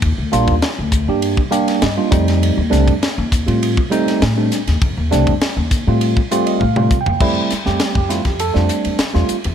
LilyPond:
<<
  \new Staff \with { instrumentName = "Tine electric piano" } { \time 4/4 \key f \mixolydian \tempo 4 = 100 << { r2 r8 f''8 ees''4 | r1 | r2 r8 d''16 ees''16 \tuplet 3/2 { f''4 g''8 } | \key f \major r4 r16 g'16 f'16 g'16 a'16 f'16 r4. | } \\ { r8 <g bes d' f'>16 r16 <d' f'>16 r8 <g bes d' g'>8 r16 <g bes d' g'>8 r16 <g bes d' f'>16 <g a c' ees'>8~ | <g a c' ees'>16 r16 <g a c' d'>16 r16 <c' d'>16 r8 <g a c' f'>8 r16 <g a c' ees'>8 r16 <g a c' d'>16 r16 <c' d'>16 | r8 <g a c' d'>16 r16 <c' f'>16 r8 <g a c' f'>8 r16 <g a c' f'>8 r16 <g a c' f'>16 r16 <c' f'>16 | <g a c' e'>8 r16 <g a c' g'>8 r16 <g a c' e'>16 <c' e'>16 r16 <g a c' d'>8. r16 <g a c' f'>16 r16 <c' e'>16 | } >> }
  \new Staff \with { instrumentName = "Upright bass" } { \clef bass \time 4/4 \key f \mixolydian ees,16 d,16 bes,,16 ees,16 r16 d,8 g,8 r8. g,16 r16 f,8~ | f,16 ees,16 c,16 f,16 r16 ees,8 a,8 r8. a,8 r16 ees,16 | f,16 ees,16 c,16 f,16 r16 ees,8 a,8 r8. a,8 r16 ees,16 | \key f \major f,16 r8 f,16 r16 f,8 f,8 f,16 r16 e,16 r16 e,16 r16 e,16 | }
  \new DrumStaff \with { instrumentName = "Drums" } \drummode { \time 4/4 <bd cymr>8 <hhp cymr>16 <bd cymr>16 <cymr sn>8 <hhp bd cymr>8 cymr16 bd16 <hhp cymr>16 <cymr sn>16 <cymr sn>8 <hhp bd cymr>16 <cymr sn>16 | cymr8 <hhp cymr sn>16 <bd cymr>16 <cymr sn>8 <hhp bd cymr>16 cymr16 cymr16 bd16 <hhp cymr>16 <cymr sn>16 <cymr sn>8 <hhp cymr sn>16 <cymr sn>16 | <bd cymr>8 <hhp cymr sn>16 <bd cymr>16 <cymr sn>8 <hhp bd cymr>8 cymr16 bd16 <hhp cymr>16 cymr16 bd16 toml16 <hhp bd>16 tomfh16 | <cymc bd>8 <hhp cymr sn>16 sn16 <hhp cymr sn>16 bd16 <hhp cymr sn>16 <bd cymr sn>16 <hhp cymr>16 sn16 <hhp cymr>16 cymr16 <hhp cymr sn>16 sn16 <hhp cymr>16 cymr16 | }
>>